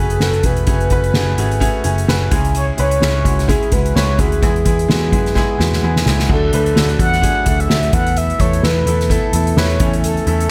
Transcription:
Already playing: picked electric bass F#1, upright piano A3 C#4 A4 B4
0.00 upright piano F#4 G#4, soft synth lead G#4
0.10 closed hi-hat
0.20 picked electric bass F#1, upright piano A3 C#4 F#4 B4, soft synth lead A4, snare
0.33 closed hi-hat
0.43 picked electric bass E1, upright piano A3 C#4 F#4 G#4, soft synth lead B4, kick, closed hi-hat
0.57 closed hi-hat
0.67 picked electric bass F#1, upright piano A3 C#4 F#4 G#4, kick, closed hi-hat
0.80 closed hi-hat
0.90 picked electric bass F#1, upright piano A3 C#4 F#4 B4, kick, closed hi-hat
1.04 closed hi-hat
1.14 picked electric bass F#1, upright piano A3 C#4 F#4 G#4, snare
1.37 picked electric bass G#1, upright piano A3 C#4 F#4 G#4, closed hi-hat
1.51 closed hi-hat
1.60 upright piano A3 C#4 F#4 G#4, kick, closed hi-hat
1.84 picked electric bass F#1, upright piano A3 C#4 F#4 G#4, closed hi-hat
1.98 closed hi-hat
2.07 picked electric bass F#1, upright piano A3 C#4 F#4 B4, snare
2.31 picked electric bass C#2, upright piano C#3 G#3 C#4 E4 G#4, kick, closed hi-hat
2.45 closed hi-hat
2.55 soft synth lead C#5, closed hi-hat
2.77 picked electric bass C#2, upright piano G#3 C#4 E4 B4, soft synth lead C#5, closed hi-hat
2.91 closed hi-hat
3.01 picked electric bass C#2, upright piano G#3 C#4 E4 G#4, snare
3.24 picked electric bass C#2, upright piano G#3 C#4 E4 F#4, kick, closed hi-hat
3.39 snare, closed hi-hat
3.48 upright piano G#3 C#4 E4 G#4, soft synth lead G#4, kick, closed hi-hat
3.63 closed hi-hat
3.72 picked electric bass C#2, upright piano G#3 C#4 E4 F#4, soft synth lead B4, kick, closed hi-hat
3.86 closed hi-hat
3.95 picked electric bass C#2, upright piano G#3 C#4 E4 B4, soft synth lead C#5, snare
4.18 picked electric bass D2, upright piano G#3 C#4 E4 F#4, soft synth lead G#4, kick, closed hi-hat
4.32 closed hi-hat
4.42 picked electric bass E2, upright piano E3 G#3 B3 E4 G#4, kick, closed hi-hat
4.56 closed hi-hat
4.65 picked electric bass E2, upright piano G#3 B3 E4 G#4, kick, closed hi-hat
4.79 closed hi-hat
4.88 picked electric bass E2, upright piano G#3 B3 E4 F#4, snare
5.12 picked electric bass F#2, upright piano G#3 B3 E4 G#4, kick, closed hi-hat
5.26 snare, closed hi-hat
5.35 upright piano G#3 B3 E4 G#4, kick, snare
5.58 picked electric bass E2, upright piano G#3 B3 E4 F#4, snare
5.73 snare
5.83 picked electric bass E2, upright piano G#3 B3 E4 G#4
5.96 snare
6.06 picked electric bass C#2, upright piano G#3 B3 E4 G#4, snare
6.19 snare
6.29 picked electric bass D2, tonewheel organ D3 F#3 A3 F#4, upright piano D3 A3 D4 F#4 A4, soft synth lead A4, kick, crash
6.52 picked electric bass D2, upright piano A3 D4 F#4 B4, soft synth lead A4, closed hi-hat
6.66 closed hi-hat
6.75 picked electric bass D2, upright piano A3 D4 F#4 A4, snare
6.89 closed hi-hat
6.99 picked electric bass E2, upright piano A3 D4 F#4 A4, soft synth lead F#5, kick, closed hi-hat
7.13 snare, closed hi-hat
7.21 upright piano A3 D4 F#4 G#4, kick, closed hi-hat
7.45 picked electric bass D2, upright piano A3 D4 F#4 A4, kick, closed hi-hat
7.60 soft synth lead E5, closed hi-hat
7.68 picked electric bass D2, upright piano A3 D4 F#4 A4, snare
7.83 closed hi-hat
7.92 picked electric bass E2, tonewheel organ B2 E3 E4, upright piano E3 A3 B3 E4 A4, soft synth lead F#5, kick, closed hi-hat
8.07 closed hi-hat
8.17 soft synth lead E5, closed hi-hat
8.30 closed hi-hat
8.39 picked electric bass E2, upright piano A3 B3 E4 A4, soft synth lead C#5, kick, closed hi-hat
8.53 closed hi-hat
8.62 picked electric bass E2, upright piano A3 B3 E4 A4, soft synth lead B4, snare
8.86 picked electric bass E2, upright piano A3 B3 E4 A4, closed hi-hat
9.00 snare, closed hi-hat
9.09 upright piano A3 B3 E4 A4, soft synth lead A4, kick, closed hi-hat
9.33 picked electric bass E2, upright piano A3 B3 E4 A4, closed hi-hat
9.47 closed hi-hat
9.57 picked electric bass E2, upright piano A3 B3 E4 B4, soft synth lead C#5, snare
9.70 closed hi-hat
9.80 picked electric bass E2, tonewheel organ C#3 E4, upright piano E3 A3 C#4 E4 A4, kick, closed hi-hat
9.93 closed hi-hat
10.04 soft synth lead A4, closed hi-hat
10.17 closed hi-hat
10.26 picked electric bass E2, upright piano A3 C#4 E4 A4, soft synth lead A4, closed hi-hat
10.40 closed hi-hat

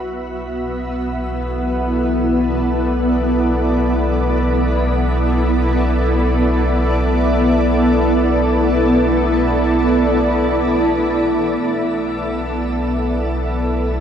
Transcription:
Already playing: sub bass B1, ambient pad B3 E4 F#4 B4 E5
0.87 ambient pad A4
1.18 ambient pad D5
11.61 sub bass B1

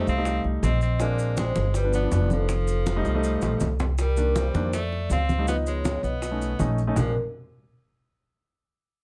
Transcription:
0.00 grand piano G3 A3 D#4
0.07 upright bass C2, tenor saxophone C4, vibraphone F5, high bongo, high conga, maracas
0.17 grand piano G3 A3 D#4
0.25 high bongo, high conga, maracas
0.44 upright bass C2, high bongo, high conga
0.63 upright bass A#1, tenor saxophone C4, vibraphone D#5, high bongo, low bongo, high conga, maracas
0.81 tenor saxophone C4, vibraphone D#5, maracas
1.00 grand piano G#3 C4 D4, tenor saxophone A#3, vibraphone D5, high bongo, high conga, maracas
1.19 high bongo, high conga, maracas
1.37 tenor saxophone G#3, vibraphone C5, high bongo, high conga, maracas
1.55 upright bass G1, high bongo, high conga, maracas
1.74 tenor saxophone G3, vibraphone B4, high bongo, high conga, maracas
1.84 grand piano F3 B3 D4
1.93 grand piano F3 B3 D4, tenor saxophone B3, vibraphone D5, high bongo, high conga, maracas
2.03 grand piano F3 B3 D4
2.12 upright bass F1, high bongo, low bongo, high conga, maracas
2.30 tenor saxophone F3, vibraphone A4, high conga, maracas
2.49 high bongo, high conga, maracas
2.68 high bongo, high conga, maracas
2.86 high bongo, high conga, maracas
2.96 grand piano G3 A3 D#4
3.04 upright bass C2, high bongo, high conga, maracas
3.15 grand piano G3 A3 D#4
3.24 high conga, maracas
3.42 upright bass A#1, low bongo, high conga, maracas
3.60 upright bass C2, low bongo, high conga, maracas
3.79 low bongo, high conga, maracas
3.98 tenor saxophone G3, vibraphone A#4, high bongo, high conga, maracas
4.17 grand piano D#3 A#3 D4, high bongo, high conga, maracas
4.35 tenor saxophone G3, vibraphone C5, high bongo, high conga, maracas
4.54 upright bass F2, grand piano D#3 A#3 D4, high bongo, high conga, maracas
4.73 tenor saxophone A3, vibraphone D5, high bongo, high conga, maracas
4.92 high bongo, high conga
5.10 upright bass C#2, tenor saxophone C4, vibraphone F5, high bongo, low bongo, high conga, maracas
5.29 high conga, maracas
5.39 grand piano G3 A3 D#4
5.47 grand piano F3 B3 D#4, tenor saxophone B3, vibraphone D#5, high bongo, high conga, maracas
5.67 tenor saxophone G#3, vibraphone C#5, high bongo, high conga, maracas
5.85 high bongo, high conga, maracas
6.03 upright bass B1, tenor saxophone B3, vibraphone D#5, high bongo, high conga, maracas
6.22 high bongo, high conga, maracas
6.31 grand piano A3 C#4 D#4
6.41 high bongo, high conga, maracas
6.59 upright bass A#1, grand piano A3 C#4 D#4, high bongo, low bongo, high conga, maracas
6.78 maracas
6.87 grand piano A3 C#4 D#4
6.96 upright bass A#1, tenor saxophone F3, grand piano G#3 C4 D4, vibraphone A#4, low bongo, low conga, maracas

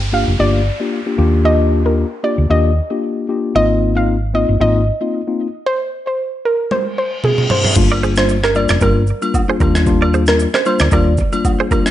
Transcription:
Already playing: fingered electric bass G1, downlifter
0.13 tine electric piano A#3 D4 F4 G4, synth pluck F5
0.28 fingered electric bass F1
0.39 fingered electric bass G1, tine electric piano A#3 D4 F4 G4, synth pluck D5
0.80 tine electric piano A#3 D4 F4 G4
1.06 tine electric piano A#3 D4 F4 G4
1.18 fingered electric bass D#2, tine electric piano A#3 D4 F4 G4
1.44 tine electric piano A#3 D4 F4 G4, synth pluck D#5
1.85 tine electric piano A#3 D4 F4 G4, synth pluck A#4
2.23 tine electric piano A#3 D4 F4 G4, synth pluck D5
2.38 fingered electric bass D2
2.50 fingered electric bass D#2, tine electric piano A#3 D4 F4 G4, synth pluck D#5
2.90 tine electric piano A#3 D4 F4 G4
3.29 tine electric piano A#3 D4 F4 G4
3.55 fingered electric bass G#1, tine electric piano A#3 C4 D#4 F4, synth pluck D#5
3.96 tine electric piano A#3 C4 D#4 F4, synth pluck F5
4.34 tine electric piano A#3 C4 D#4 F4, synth pluck D#5
4.49 fingered electric bass G1
4.60 fingered electric bass G#1, tine electric piano A#3 C4 D#4 F4, synth pluck D#5
5.01 tine electric piano A#3 C4 D#4 F4
5.27 tine electric piano A#3 C4 D#4 F4
5.66 synth pluck C5
6.07 synth pluck C5
6.45 synth pluck A#4
6.71 synth pluck C5, high tom, reverse cymbal
6.98 synth pluck C5
7.24 synth pluck G#4, mid tom
7.38 mid tom
7.50 synth pluck C5, floor tom
7.64 floor tom
7.76 fingered electric bass G1, tine electric piano G3 A#3 D4 F4, kick, crash, shaker
7.92 clean electric guitar A#4 D5, high agogo
8.03 clean electric guitar G#4 C5, shaker
8.16 tine electric piano G3 A#3 D4 F4, synth pluck C5, cross-stick, shaker
8.29 shaker
8.44 clean electric guitar G4 A#4, synth pluck A#4, cross-stick
8.55 tine electric piano G3 A#3 D4 F4, synth pluck D5, high agogo, shaker
8.69 fingered electric bass F1, clean electric guitar A#4 D5, cross-stick, shaker
8.81 fingered electric bass G1, tine electric piano G3 A#3 D4 F4, clean electric guitar G4 A#4, synth pluck A#4, kick, high agogo, shaker
9.07 shaker
9.22 tine electric piano G3 A#3 D4 F4, high agogo, shaker
9.34 kick, low woodblock, shaker
9.48 tine electric piano G3 A#3 D4 F4, clean electric guitar G#4 C5
9.60 fingered electric bass D#2, tine electric piano G3 A#3 D4 F4, clean electric guitar G4 A#4, kick, high agogo, shaker
9.75 cross-stick, shaker
9.86 tine electric piano G3 A#3 D4 F4, kick, shaker
10.02 clean electric guitar A#4 D5, high agogo
10.14 clean electric guitar G#4 C5, shaker
10.27 tine electric piano G3 A#3 D4 F4, synth pluck A#4, cross-stick, shaker
10.40 shaker
10.54 clean electric guitar G4 A#4, synth pluck C5, cross-stick
10.65 tine electric piano G3 A#3 D4 F4, synth pluck C5, high agogo, shaker
10.79 fingered electric bass D2, clean electric guitar A#4 D5, cross-stick, shaker
10.92 fingered electric bass D#2, tine electric piano G3 A#3 D4 F4, clean electric guitar G4 A#4, synth pluck D5, kick, high agogo, shaker
11.18 kick, shaker
11.32 tine electric piano G3 A#3 D4 F4, high agogo, shaker
11.45 kick, low woodblock, shaker
11.60 clean electric guitar G#4 C5
11.71 tine electric piano G3 A#3 D4 F4, clean electric guitar G4 A#4, kick, high agogo, shaker
11.86 cross-stick, shaker

